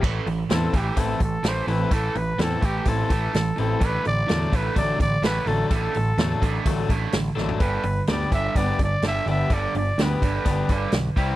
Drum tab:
CC |x---------------|----------------|----------------|----------------|
HH |--o-o-o-o-o-o-o-|o-o-o-o-o-o-o-o-|o-o-o-o-o-o-o-o-|o-o-o-o-o-o-o---|
SD |----o-------o---|----o-------o---|----o-------o---|----o-------o-o-|
FT |----------------|----------------|----------------|---------------o|
BD |o-----o-o-o-----|o-----o-o-o-----|o-----o-o-o-----|o-----o-o-o-----|

CC |----------------|----------------|
HH |o-o-o-o-o-o-o-o-|o-o-o-o-o-o-o-o-|
SD |----o-------o---|----o-------o---|
FT |----------------|----------------|
BD |o-----o-o-o-----|o-----o-o-o---o-|